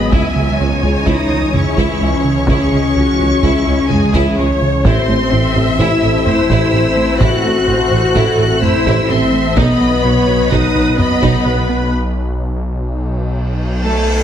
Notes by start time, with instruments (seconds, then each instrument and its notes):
Already playing: detuned saw bass G#1, french horn section B3, cello section B3, violin section B5
0.11 double bass section C#2, detuned saw bass C#2, tuba C#2, analog synth bass C#2, analog synth pad E3 C#4 G#4 C#5, french horn section G#3, cello section G#3, violin section E4 C#5 G#5, viola section E5, taiko
0.36 double bass section C#2, tuba C#2, analog synth bass C#3, violin section G#3
0.59 analog synth bass C#2, tuba C#2, double bass section C#2, violin section C#4, viola section C#5
0.82 analog synth bass C#2, double bass section C#2, tuba C#2, violin section G#3
1.06 double bass section C#2, analog synth bass C#2, tuba C#2, cello section D#4, french horn section D#4, violin section E4 D#6, taiko
1.30 tuba C#2, analog synth bass C#2, double bass section C#2, violin section G#3
1.52 analog synth bass C#3, cello section C#4, french horn section C#4, viola section E4, violin section C#6, taiko low-mid
1.77 tuba C#2, double bass section C#2, analog synth bass C#2, violin section E4, taiko
2.00 tuba C#2, analog synth bass C#2, double bass section C#2, violin section G#3
2.24 analog synth bass C#3
2.46 tuba C#2, analog synth bass C#2, double bass section C#2, french horn section C#4, cello section C#4, violin section E4 C#6, viola section G#4, taiko
2.72 tuba C#2, double bass section C#2, analog synth bass C#3, violin section G#3
2.94 analog synth bass C#2, tuba C#2, double bass section C#2, violin section C#4, viola section F#4
3.19 tuba C#2, analog synth bass C#2, double bass section C#2, violin section G#3
3.42 tuba C#2, analog synth bass C#2, double bass section C#2, viola section E4, violin section E4, taiko
3.66 analog synth bass C#2, tuba C#2, double bass section C#2, violin section G#3
3.89 analog synth bass C#3, french horn section G#3, cello section G#3, viola section G#4, violin section G#5, taiko low-mid
4.13 analog synth bass C#2, double bass section C#2, tuba C#2, violin section E4, taiko
4.37 tuba C#2, analog synth bass C#2, double bass section C#2, violin section G#3, viola section C#5
4.62 analog synth bass C#3
4.84 tuba A1, double bass section A1, detuned saw bass A1, analog synth bass A2, analog synth pad E3 C4 A4 E5, cello section C4, french horn section C4, violin section E4 C5 C6, viola section C5, taiko
5.08 tuba A1, double bass section A1, violin section A3, analog synth bass A3
5.32 tuba A1, double bass section A1, analog synth bass A2, violin section C4, viola section E5
5.55 tuba A1, double bass section A1, analog synth bass A2, violin section A3
5.78 tuba A1, double bass section A1, analog synth bass A2, french horn section E4, cello section E4, violin section E4 E6, taiko
6.03 tuba A1, double bass section A1, analog synth bass A2, violin section A3
6.25 analog synth bass A3, french horn section E4, cello section E4, viola section C5, violin section E6, taiko low-mid
6.50 double bass section A1, tuba A1, analog synth bass A2, violin section E4, taiko
6.73 tuba A1, double bass section A1, analog synth bass A2, violin section A3, viola section C5
6.96 analog synth bass A3
7.19 double bass section A1, tuba A1, analog synth bass A2, violin section E4 F#6, french horn section F#4, cello section F#4, viola section A4, taiko
7.44 double bass section A1, tuba A1, analog synth bass A3, violin section A3
7.67 tuba A1, double bass section A1, analog synth bass A2, violin section C4, viola section C5
7.91 double bass section A1, tuba A1, analog synth bass A2, violin section A3
8.14 double bass section A1, tuba A1, analog synth bass A2, violin section E4, viola section A4, taiko
8.38 double bass section A1, tuba A1, analog synth bass A2, violin section A3
8.62 analog synth bass A3, french horn section E4, cello section E4, viola section C5, violin section E6, taiko low-mid
8.85 tuba A1, double bass section A1, analog synth bass A2, violin section E4, taiko
9.09 tuba A1, double bass section A1, analog synth bass A2, violin section A3 C6, french horn section C4, cello section C4, viola section E5
9.33 analog synth bass A3
9.56 detuned saw bass B1, double bass section B1, tuba B1, analog synth bass B2, analog synth pad F#3 B3 B4 D#5, french horn section B3, cello section B3, violin section D#4 B4 B5, viola section D#5, taiko
9.81 double bass section B1, tuba B1, analog synth bass B3, violin section B3
10.04 double bass section B1, tuba B1, analog synth bass B2, violin section B3, viola section C#5
10.27 tuba B1, double bass section B1, analog synth bass B2, violin section B3
10.50 tuba B1, double bass section B1, analog synth bass B2, french horn section D#4, violin section D#4 D#6, cello section D#4, viola section B4, taiko
10.75 tuba B1, double bass section B1, analog synth bass B2, violin section B3
10.97 french horn section B3, analog synth bass B3, cello section B3, viola section D#5, violin section B5, taiko low-mid
11.22 tuba B1, double bass section B1, analog synth bass B2, violin section D#4, taiko
11.45 double bass section B1, tuba B1, analog synth bass B2, violin section B3, viola section B4
11.69 analog synth bass B3
11.93 reverse cymbal
13.81 cello section A3, violin section A4 A5